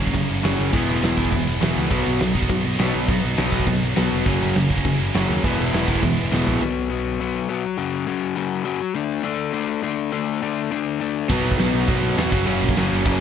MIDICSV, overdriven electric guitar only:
0, 0, Header, 1, 2, 480
1, 0, Start_track
1, 0, Tempo, 293542
1, 1199, Time_signature, 4, 2, 24, 8
1, 21590, End_track
2, 0, Start_track
2, 0, Title_t, "Overdriven electric guitar"
2, 0, Program_c, 0, 29
2, 223, Note_on_c, 0, 42, 75
2, 235, Note_on_c, 0, 49, 90
2, 446, Note_off_c, 0, 42, 0
2, 452, Note_off_c, 0, 49, 0
2, 713, Note_on_c, 0, 42, 95
2, 719, Note_on_c, 0, 49, 94
2, 724, Note_on_c, 0, 54, 100
2, 1182, Note_off_c, 0, 42, 0
2, 1185, Note_off_c, 0, 49, 0
2, 1188, Note_off_c, 0, 54, 0
2, 1195, Note_on_c, 0, 40, 90
2, 1201, Note_on_c, 0, 47, 94
2, 1207, Note_on_c, 0, 52, 92
2, 1648, Note_off_c, 0, 40, 0
2, 1649, Note_off_c, 0, 47, 0
2, 1661, Note_off_c, 0, 52, 0
2, 1668, Note_on_c, 0, 40, 85
2, 1669, Note_on_c, 0, 47, 81
2, 1681, Note_on_c, 0, 52, 87
2, 2137, Note_off_c, 0, 40, 0
2, 2142, Note_off_c, 0, 47, 0
2, 2148, Note_off_c, 0, 52, 0
2, 2156, Note_on_c, 0, 40, 74
2, 2159, Note_on_c, 0, 47, 85
2, 2376, Note_off_c, 0, 40, 0
2, 2377, Note_off_c, 0, 47, 0
2, 2631, Note_on_c, 0, 40, 84
2, 2634, Note_on_c, 0, 47, 91
2, 2640, Note_on_c, 0, 52, 105
2, 3090, Note_off_c, 0, 47, 0
2, 3104, Note_off_c, 0, 40, 0
2, 3106, Note_off_c, 0, 52, 0
2, 3110, Note_on_c, 0, 47, 87
2, 3113, Note_on_c, 0, 54, 95
2, 3116, Note_on_c, 0, 59, 86
2, 3584, Note_off_c, 0, 47, 0
2, 3586, Note_off_c, 0, 54, 0
2, 3587, Note_off_c, 0, 59, 0
2, 3610, Note_on_c, 0, 47, 66
2, 3614, Note_on_c, 0, 54, 74
2, 3825, Note_off_c, 0, 47, 0
2, 3827, Note_off_c, 0, 54, 0
2, 4083, Note_on_c, 0, 47, 75
2, 4088, Note_on_c, 0, 54, 76
2, 4302, Note_off_c, 0, 47, 0
2, 4305, Note_off_c, 0, 54, 0
2, 4567, Note_on_c, 0, 47, 93
2, 4571, Note_on_c, 0, 54, 92
2, 4577, Note_on_c, 0, 59, 105
2, 5018, Note_off_c, 0, 47, 0
2, 5028, Note_off_c, 0, 54, 0
2, 5038, Note_on_c, 0, 47, 79
2, 5040, Note_off_c, 0, 59, 0
2, 5047, Note_on_c, 0, 54, 80
2, 5260, Note_off_c, 0, 47, 0
2, 5265, Note_off_c, 0, 54, 0
2, 5528, Note_on_c, 0, 47, 88
2, 5539, Note_on_c, 0, 54, 94
2, 5543, Note_on_c, 0, 59, 88
2, 5986, Note_off_c, 0, 47, 0
2, 5997, Note_off_c, 0, 54, 0
2, 6004, Note_off_c, 0, 59, 0
2, 6005, Note_on_c, 0, 47, 79
2, 6016, Note_on_c, 0, 54, 89
2, 6225, Note_off_c, 0, 47, 0
2, 6230, Note_off_c, 0, 54, 0
2, 6484, Note_on_c, 0, 47, 83
2, 6491, Note_on_c, 0, 54, 93
2, 6497, Note_on_c, 0, 59, 96
2, 6955, Note_off_c, 0, 47, 0
2, 6958, Note_off_c, 0, 54, 0
2, 6961, Note_off_c, 0, 59, 0
2, 6967, Note_on_c, 0, 42, 93
2, 6972, Note_on_c, 0, 49, 98
2, 6976, Note_on_c, 0, 54, 104
2, 7432, Note_off_c, 0, 42, 0
2, 7439, Note_off_c, 0, 49, 0
2, 7441, Note_off_c, 0, 54, 0
2, 7452, Note_on_c, 0, 42, 84
2, 7458, Note_on_c, 0, 49, 87
2, 7669, Note_off_c, 0, 42, 0
2, 7672, Note_off_c, 0, 49, 0
2, 7932, Note_on_c, 0, 42, 70
2, 7932, Note_on_c, 0, 49, 87
2, 8149, Note_off_c, 0, 42, 0
2, 8150, Note_off_c, 0, 49, 0
2, 8419, Note_on_c, 0, 42, 98
2, 8428, Note_on_c, 0, 49, 100
2, 8429, Note_on_c, 0, 54, 107
2, 8883, Note_off_c, 0, 42, 0
2, 8887, Note_off_c, 0, 49, 0
2, 8888, Note_off_c, 0, 54, 0
2, 8895, Note_on_c, 0, 40, 90
2, 8897, Note_on_c, 0, 47, 88
2, 8901, Note_on_c, 0, 52, 96
2, 9354, Note_off_c, 0, 40, 0
2, 9362, Note_off_c, 0, 47, 0
2, 9364, Note_off_c, 0, 52, 0
2, 9373, Note_on_c, 0, 40, 94
2, 9383, Note_on_c, 0, 47, 87
2, 9390, Note_on_c, 0, 52, 96
2, 9830, Note_off_c, 0, 40, 0
2, 9836, Note_off_c, 0, 47, 0
2, 9848, Note_off_c, 0, 52, 0
2, 9850, Note_on_c, 0, 40, 84
2, 9856, Note_on_c, 0, 47, 89
2, 10069, Note_off_c, 0, 40, 0
2, 10071, Note_off_c, 0, 47, 0
2, 10332, Note_on_c, 0, 40, 90
2, 10337, Note_on_c, 0, 47, 90
2, 10344, Note_on_c, 0, 52, 102
2, 10798, Note_off_c, 0, 40, 0
2, 10801, Note_off_c, 0, 47, 0
2, 10804, Note_off_c, 0, 52, 0
2, 10818, Note_on_c, 0, 47, 97
2, 10826, Note_on_c, 0, 54, 99
2, 10826, Note_on_c, 0, 59, 100
2, 11260, Note_off_c, 0, 59, 0
2, 11269, Note_off_c, 0, 47, 0
2, 11278, Note_off_c, 0, 54, 0
2, 11279, Note_on_c, 0, 59, 80
2, 11285, Note_on_c, 0, 54, 76
2, 11289, Note_on_c, 0, 47, 77
2, 11761, Note_off_c, 0, 47, 0
2, 11772, Note_off_c, 0, 59, 0
2, 11780, Note_off_c, 0, 54, 0
2, 11781, Note_on_c, 0, 47, 76
2, 11786, Note_on_c, 0, 54, 82
2, 11792, Note_on_c, 0, 59, 98
2, 12232, Note_off_c, 0, 59, 0
2, 12240, Note_off_c, 0, 47, 0
2, 12251, Note_on_c, 0, 59, 98
2, 12253, Note_off_c, 0, 54, 0
2, 12260, Note_on_c, 0, 47, 79
2, 12260, Note_on_c, 0, 54, 93
2, 12477, Note_off_c, 0, 59, 0
2, 12481, Note_off_c, 0, 47, 0
2, 12715, Note_on_c, 0, 42, 98
2, 12719, Note_on_c, 0, 49, 104
2, 12720, Note_off_c, 0, 54, 0
2, 12726, Note_on_c, 0, 54, 100
2, 13187, Note_off_c, 0, 49, 0
2, 13190, Note_off_c, 0, 54, 0
2, 13192, Note_off_c, 0, 42, 0
2, 13197, Note_on_c, 0, 54, 88
2, 13207, Note_on_c, 0, 49, 89
2, 13211, Note_on_c, 0, 42, 65
2, 13644, Note_off_c, 0, 42, 0
2, 13650, Note_off_c, 0, 49, 0
2, 13664, Note_on_c, 0, 42, 85
2, 13669, Note_on_c, 0, 49, 85
2, 13675, Note_off_c, 0, 54, 0
2, 13682, Note_on_c, 0, 54, 89
2, 14134, Note_off_c, 0, 49, 0
2, 14137, Note_off_c, 0, 42, 0
2, 14137, Note_off_c, 0, 54, 0
2, 14143, Note_on_c, 0, 54, 102
2, 14154, Note_on_c, 0, 49, 88
2, 14156, Note_on_c, 0, 42, 76
2, 14385, Note_off_c, 0, 49, 0
2, 14386, Note_off_c, 0, 42, 0
2, 14628, Note_off_c, 0, 54, 0
2, 14632, Note_on_c, 0, 50, 87
2, 14634, Note_on_c, 0, 57, 110
2, 14643, Note_on_c, 0, 62, 105
2, 15100, Note_off_c, 0, 62, 0
2, 15106, Note_on_c, 0, 62, 95
2, 15112, Note_off_c, 0, 57, 0
2, 15114, Note_off_c, 0, 50, 0
2, 15118, Note_on_c, 0, 57, 80
2, 15120, Note_on_c, 0, 50, 75
2, 15569, Note_off_c, 0, 57, 0
2, 15571, Note_off_c, 0, 50, 0
2, 15576, Note_off_c, 0, 62, 0
2, 15589, Note_on_c, 0, 57, 93
2, 15591, Note_on_c, 0, 50, 82
2, 15595, Note_on_c, 0, 62, 90
2, 16054, Note_off_c, 0, 62, 0
2, 16067, Note_off_c, 0, 57, 0
2, 16068, Note_off_c, 0, 50, 0
2, 16074, Note_on_c, 0, 62, 105
2, 16087, Note_on_c, 0, 57, 80
2, 16088, Note_on_c, 0, 50, 82
2, 16532, Note_off_c, 0, 50, 0
2, 16533, Note_off_c, 0, 57, 0
2, 16546, Note_off_c, 0, 62, 0
2, 16552, Note_on_c, 0, 50, 97
2, 16552, Note_on_c, 0, 57, 94
2, 16566, Note_on_c, 0, 62, 96
2, 17023, Note_off_c, 0, 62, 0
2, 17028, Note_off_c, 0, 57, 0
2, 17036, Note_off_c, 0, 50, 0
2, 17043, Note_on_c, 0, 62, 78
2, 17047, Note_on_c, 0, 57, 81
2, 17056, Note_on_c, 0, 50, 77
2, 17497, Note_off_c, 0, 50, 0
2, 17512, Note_off_c, 0, 57, 0
2, 17513, Note_off_c, 0, 62, 0
2, 17516, Note_on_c, 0, 50, 79
2, 17531, Note_on_c, 0, 57, 89
2, 17533, Note_on_c, 0, 62, 96
2, 17978, Note_off_c, 0, 62, 0
2, 17992, Note_off_c, 0, 57, 0
2, 17993, Note_off_c, 0, 50, 0
2, 17998, Note_on_c, 0, 62, 101
2, 18012, Note_on_c, 0, 57, 83
2, 18013, Note_on_c, 0, 50, 82
2, 18456, Note_off_c, 0, 50, 0
2, 18460, Note_off_c, 0, 62, 0
2, 18463, Note_on_c, 0, 47, 93
2, 18467, Note_off_c, 0, 57, 0
2, 18475, Note_on_c, 0, 59, 110
2, 18476, Note_on_c, 0, 54, 89
2, 18922, Note_off_c, 0, 59, 0
2, 18935, Note_off_c, 0, 47, 0
2, 18941, Note_on_c, 0, 59, 86
2, 18946, Note_off_c, 0, 54, 0
2, 18952, Note_on_c, 0, 54, 91
2, 18955, Note_on_c, 0, 47, 73
2, 19398, Note_off_c, 0, 47, 0
2, 19415, Note_off_c, 0, 59, 0
2, 19418, Note_on_c, 0, 47, 78
2, 19420, Note_off_c, 0, 54, 0
2, 19427, Note_on_c, 0, 54, 89
2, 19435, Note_on_c, 0, 59, 94
2, 19885, Note_off_c, 0, 59, 0
2, 19898, Note_off_c, 0, 54, 0
2, 19899, Note_off_c, 0, 47, 0
2, 19905, Note_on_c, 0, 54, 89
2, 19905, Note_on_c, 0, 59, 89
2, 19919, Note_on_c, 0, 47, 79
2, 20133, Note_off_c, 0, 59, 0
2, 20140, Note_off_c, 0, 47, 0
2, 20378, Note_on_c, 0, 42, 86
2, 20380, Note_on_c, 0, 49, 88
2, 20383, Note_off_c, 0, 54, 0
2, 20389, Note_on_c, 0, 54, 102
2, 20864, Note_off_c, 0, 49, 0
2, 20866, Note_off_c, 0, 42, 0
2, 20868, Note_off_c, 0, 54, 0
2, 20874, Note_on_c, 0, 54, 93
2, 20883, Note_on_c, 0, 49, 92
2, 20885, Note_on_c, 0, 42, 78
2, 21335, Note_off_c, 0, 42, 0
2, 21347, Note_off_c, 0, 49, 0
2, 21355, Note_on_c, 0, 42, 87
2, 21361, Note_off_c, 0, 54, 0
2, 21367, Note_on_c, 0, 49, 80
2, 21368, Note_on_c, 0, 54, 90
2, 21590, Note_off_c, 0, 42, 0
2, 21590, Note_off_c, 0, 49, 0
2, 21590, Note_off_c, 0, 54, 0
2, 21590, End_track
0, 0, End_of_file